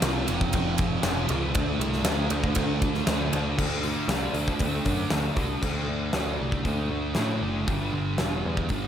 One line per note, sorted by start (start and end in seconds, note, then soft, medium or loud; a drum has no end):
0.02 0.25 C2 loud
0.02 0.54 F2 medium
0.02 0.30 C3 loud
0.02 0.26 F3 loud
0.02 snare loud
0.02 ride loud
0.27 0.50 F1 medium
0.27 1.05 C3 medium
0.27 1.06 F3 medium
0.27 ride medium
0.41 kick medium
0.53 0.97 F1 loud
0.53 kick loud
0.53 ride loud
0.78 kick loud
0.78 ride medium
1.03 1.26 F1 loud
1.03 1.54 F2 medium
1.03 1.32 C3 medium
1.03 snare loud
1.03 ride loud
1.08 1.28 F3 medium
1.29 1.52 C#2 loud
1.29 1.54 F3 medium
1.29 ride medium
1.33 1.53 C3 medium
1.54 1.77 D2 loud
1.54 2.03 D3 medium
1.54 2.05 A3 medium
1.54 2.07 D4 loud
1.54 kick loud
1.54 ride loud
1.80 2.02 C2 loud
1.80 ride medium
1.93 snare soft
2.04 2.27 D2 loud
2.04 2.56 D3 medium
2.04 2.32 A3 loud
2.04 2.29 D4 loud
2.04 snare loud
2.04 ride loud
2.30 2.53 D2 medium
2.30 3.07 A3 medium
2.30 3.09 D4 medium
2.30 ride medium
2.44 kick medium
2.55 3.00 D2 loud
2.55 kick loud
2.55 ride loud
2.82 kick loud
2.82 ride medium
2.95 snare soft
3.06 3.29 D2 medium
3.06 3.57 D3 medium
3.06 3.35 A3 medium
3.06 3.32 D4 medium
3.06 snare loud
3.06 ride medium
3.33 3.55 D2 loud
3.33 3.59 A3 medium
3.33 3.57 D4 medium
3.33 ride medium
3.58 3.93 D2 medium
3.58 4.08 D3 medium
3.58 3.86 A3 medium
3.58 kick medium
3.58 crash loud
3.62 3.83 D4 medium
3.83 4.11 D4 medium
3.83 open hi-hat soft
3.88 4.09 A3 medium
4.08 4.26 C2 medium
4.08 4.60 D3 medium
4.08 4.38 A3 medium
4.08 snare loud
4.08 open hi-hat medium
4.13 4.35 D4 medium
4.33 4.52 D2 medium
4.33 4.63 D4 medium
4.33 open hi-hat medium
4.39 4.62 A3 medium
4.48 kick medium
4.59 4.78 D2 loud
4.59 5.11 D3 medium
4.59 4.88 A3 medium
4.59 kick medium
4.59 open hi-hat medium
4.64 4.84 D4 medium
4.85 5.03 F#2 medium
4.85 5.13 A3 medium
4.85 5.15 D4 medium
4.85 kick medium
4.85 open hi-hat medium
5.10 5.29 D2 medium
5.10 5.62 D3 medium
5.10 5.40 A3 medium
5.10 snare loud
5.10 open hi-hat medium
5.16 5.37 D4 medium
5.36 5.54 C2 loud
5.36 5.62 D4 medium
5.36 kick medium
5.36 open hi-hat medium
5.42 5.63 A3 soft
5.62 5.86 D2 medium
5.62 6.13 D3 medium
5.62 6.15 A3 medium
5.62 kick medium
5.62 crash medium
5.67 6.17 D4 medium
5.88 6.12 D2 medium
6.13 6.37 D2 medium
6.13 6.63 D3 medium
6.13 6.65 A3 medium
6.13 snare loud
6.13 open hi-hat soft
6.17 6.67 D4 medium
6.40 6.63 C2 medium
6.52 kick medium
6.64 6.88 D2 medium
6.64 7.13 D3 medium
6.64 6.91 A3 medium
6.64 6.89 D4 medium
6.64 kick medium
6.64 open hi-hat soft
6.90 7.14 D2 medium
6.90 7.15 A3 soft
6.90 7.18 D4 medium
7.14 7.39 A2 medium
7.14 7.65 D3 medium
7.14 7.66 A3 medium
7.14 8.87 D4 medium
7.14 snare medium
7.14 open hi-hat soft
7.41 7.65 F#1 medium
7.67 7.91 G1 medium
7.67 8.17 G2 medium
7.67 8.19 D3 medium
7.67 8.21 G3 medium
7.67 kick loud
7.67 open hi-hat soft
7.93 8.16 G1 medium
8.18 8.42 E1 medium
8.18 8.68 G2 medium
8.18 8.70 D3 medium
8.18 snare loud
8.18 open hi-hat soft
8.22 8.72 G3 medium
8.45 8.68 E2 medium
8.57 kick medium
8.69 8.87 G1 loud
8.69 8.87 G2 medium
8.69 8.87 D3 medium
8.69 kick medium
8.69 open hi-hat soft
8.73 8.87 G3 medium